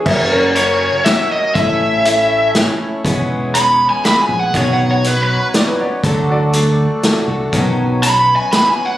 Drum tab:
CC |x-----|------|------|------|
HH |--x-x-|x-x-x-|x-x-x-|x-x-x-|
SD |----o-|----o-|----o-|----o-|
BD |o-----|o-----|o-----|o-----|

CC |------|------|
HH |x-x-x-|x-x-x-|
SD |----o-|----o-|
BD |o-----|o-----|